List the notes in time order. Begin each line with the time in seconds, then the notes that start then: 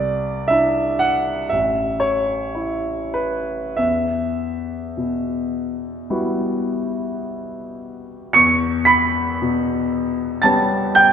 Already playing: C2 D5
0.48 D4 E4 E5
0.99 F#5
1.49 A1 E5
2.00 C#5
2.55 E4
3.14 B4
3.77 E2 E5
4.97 B2
6.10 G3 B3 E4 F#4
8.33 E2 C#6 C#7
8.85 B5 B6
9.42 B2
10.42 G3 B3 C#4 G4 A5 A6
10.95 G5 G6